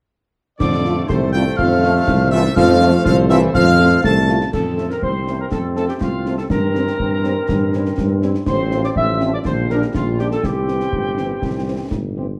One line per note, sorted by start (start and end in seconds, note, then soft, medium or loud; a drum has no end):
0.59 1.02 F2 medium
0.59 4.25 C3 medium
0.59 1.06 D3 medium
0.59 4.26 A3 medium
0.59 1.06 A4 medium
0.59 1.06 C5 medium
0.59 1.06 D5 loud
0.59 1.06 D6 loud
0.59 concert bass drum medium
0.59 snare medium
0.59 crash medium
0.73 snare medium
0.85 0.94 A3 medium
0.85 0.94 C4 medium
0.85 0.94 F4 medium
0.85 snare medium
1.08 1.50 C2 medium
1.08 1.32 C3 medium
1.08 1.55 A4 medium
1.08 1.33 C5 loud
1.08 1.55 C5 medium
1.08 1.14 C6 medium
1.08 concert bass drum medium
1.08 snare medium
1.32 1.45 G3 medium
1.32 1.43 A3 medium
1.32 1.43 C4 medium
1.32 1.43 F4 medium
1.32 1.56 G5 loud
1.32 1.39 G6 loud
1.32 snare medium
1.57 2.00 F2 medium
1.57 2.28 F3 medium
1.57 2.53 A4 medium
1.57 2.53 C5 medium
1.57 2.32 F5 loud
1.57 2.33 F6 loud
1.57 concert bass drum medium
1.83 1.92 A3 medium
1.83 1.92 C4 medium
1.83 1.92 F4 medium
1.83 snare medium
2.07 2.49 C2 loud
2.07 concert bass drum medium
2.07 snare medium
2.31 2.43 E3 loud
2.31 2.41 A3 medium
2.31 2.41 C4 medium
2.31 2.41 F4 medium
2.31 2.55 E5 loud
2.31 2.55 E6 loud
2.31 snare medium
2.44 snare medium
2.56 2.98 F2 loud
2.56 3.03 F3 loud
2.56 3.03 A4 loud
2.56 3.03 C5 medium
2.56 3.03 F5 loud
2.56 3.02 F6 loud
2.56 concert bass drum medium
2.56 snare medium
2.56 crash soft
2.69 snare medium
2.81 2.90 A3 medium
2.81 2.90 C4 medium
2.81 2.90 F4 medium
2.81 snare medium
3.05 3.47 C2 loud
3.05 3.28 F3 loud
3.05 3.52 A4 medium
3.05 3.52 C5 loud
3.05 3.16 F5 loud
3.05 3.11 F6 loud
3.05 concert bass drum medium
3.05 snare medium
3.29 3.53 E3 loud
3.29 3.39 A3 medium
3.29 3.39 C4 loud
3.29 3.39 F4 medium
3.29 3.41 E5 loud
3.29 3.36 E6 loud
3.29 snare medium
3.54 3.96 F2 loud
3.54 4.00 F3 loud
3.54 4.01 A4 medium
3.54 4.01 C5 medium
3.54 4.01 F5 loud
3.54 4.01 F6 loud
3.54 concert bass drum medium
3.79 3.88 A3 medium
3.79 3.88 C4 medium
3.79 3.88 F4 medium
3.79 snare medium
4.03 4.45 C2 medium
4.03 4.50 A3 loud
4.03 4.27 A4 medium
4.03 4.16 C5 medium
4.03 4.51 A5 loud
4.03 4.50 A6 loud
4.03 concert bass drum medium
4.03 snare medium
4.29 4.38 A3 medium
4.29 4.38 C4 medium
4.29 4.38 F4 medium
4.29 snare medium
4.41 snare medium
4.52 4.95 F2 medium
4.52 6.46 C3 medium
4.52 6.46 C4 medium
4.52 4.88 A4 medium
4.52 4.88 A5 medium
4.52 concert bass drum medium
4.52 snare medium
4.52 crash soft
4.78 4.87 A3 soft
4.78 4.87 C4 medium
4.78 4.87 F4 soft
4.78 snare soft
4.90 5.02 A#4 medium
4.90 4.97 A#5 medium
4.90 snare soft
5.02 5.44 C2 medium
5.02 5.37 C5 medium
5.02 5.37 C6 medium
5.02 concert bass drum medium
5.27 5.36 A3 medium
5.27 5.36 C4 medium
5.27 5.38 F4 soft
5.27 snare soft
5.40 5.46 A#4 medium
5.40 5.46 A#5 medium
5.52 5.93 F2 medium
5.52 5.63 A4 medium
5.52 5.58 A5 medium
5.52 concert bass drum medium
5.52 snare medium
5.76 5.85 A3 medium
5.76 5.85 C4 medium
5.76 5.87 F4 soft
5.76 5.88 A4 medium
5.76 5.88 A5 medium
5.76 snare medium
5.88 6.01 G4 medium
5.88 5.94 G5 medium
5.88 snare soft
6.01 6.43 C2 medium
6.01 6.38 F4 medium
6.01 6.36 F5 medium
6.01 concert bass drum medium
6.01 snare medium
6.26 6.35 A3 medium
6.26 6.35 C4 medium
6.26 6.36 F4 medium
6.26 snare soft
6.37 6.44 A4 medium
6.37 6.43 A5 medium
6.37 snare soft
6.50 6.92 G2 medium
6.50 8.43 E3 medium
6.50 8.44 C4 medium
6.50 8.19 A#4 medium
6.50 8.19 A#5 medium
6.50 concert bass drum medium
6.50 snare medium
6.74 6.83 G3 medium
6.74 6.84 C4 medium
6.74 6.85 E4 medium
6.74 snare soft
6.87 snare soft
6.99 7.37 G2 medium
6.99 concert bass drum medium
7.24 7.33 G3 medium
7.24 7.33 C4 medium
7.24 7.34 E4 medium
7.24 snare soft
7.49 7.90 G2 medium
7.49 concert bass drum medium
7.49 snare medium
7.73 7.83 G3 medium
7.73 7.83 C4 medium
7.73 7.83 E4 medium
7.73 snare medium
7.85 snare soft
7.98 8.39 G2 medium
7.98 concert bass drum medium
7.98 snare medium
8.22 8.32 G3 medium
8.22 8.32 C4 medium
8.22 8.32 E4 medium
8.22 snare soft
8.35 snare medium
8.46 8.88 A1 medium
8.46 10.44 F3 medium
8.46 9.42 C4 medium
8.46 8.82 C5 loud
8.46 8.82 C6 medium
8.46 concert bass drum medium
8.46 snare medium
8.46 crash soft
8.71 8.80 F3 medium
8.71 8.81 A3 medium
8.71 8.80 C4 medium
8.71 8.82 F4 medium
8.71 snare medium
8.84 8.97 D5 medium
8.84 8.90 D6 medium
8.84 snare medium
8.96 9.38 A1 medium
8.96 9.31 E5 loud
8.96 9.31 E6 medium
8.96 concert bass drum medium
9.20 9.30 F3 medium
9.20 9.30 A3 medium
9.20 9.30 C4 medium
9.20 9.29 F4 medium
9.20 snare soft
9.33 9.39 D5 loud
9.33 9.39 D6 medium
9.45 9.87 A#1 medium
9.45 10.44 G3 medium
9.45 9.69 C5 loud
9.45 9.52 C6 medium
9.45 concert bass drum medium
9.45 snare medium
9.70 9.80 F3 medium
9.70 9.80 G3 medium
9.70 9.80 D4 medium
9.70 9.79 G4 medium
9.70 9.82 A#4 medium
9.70 9.76 A#5 medium
9.70 snare medium
9.82 snare soft
9.94 10.36 A#1 medium
9.94 10.18 F4 medium
9.94 10.01 F5 medium
9.94 concert bass drum medium
9.94 snare medium
10.18 10.28 F3 medium
10.18 10.28 G3 medium
10.18 10.28 D4 medium
10.18 10.28 G4 medium
10.18 10.26 G4 medium
10.18 10.30 G5 medium
10.18 snare soft
10.31 10.44 A4 medium
10.31 10.44 A5 medium
10.31 snare medium
10.43 10.85 C2 medium
10.43 12.16 E3 medium
10.43 12.16 C4 medium
10.43 11.92 G4 medium
10.43 11.91 G5 medium
10.43 concert bass drum medium
10.43 snare medium
10.68 10.78 E3 soft
10.68 10.78 C4 medium
10.68 10.77 G4 soft
10.68 snare soft
10.80 snare soft
10.92 11.34 G1 medium
10.92 concert bass drum medium
11.18 11.27 E3 medium
11.18 11.27 C4 medium
11.18 11.27 G4 soft
11.18 snare soft
11.42 11.83 C2 medium
11.42 concert bass drum medium
11.42 snare medium
11.67 11.76 E3 soft
11.67 11.76 C4 soft
11.67 11.76 G4 soft
11.91 12.33 G1 medium
11.91 concert bass drum medium
11.91 snare medium
12.16 12.25 E3 soft
12.16 12.25 C4 medium
12.16 12.26 G4 soft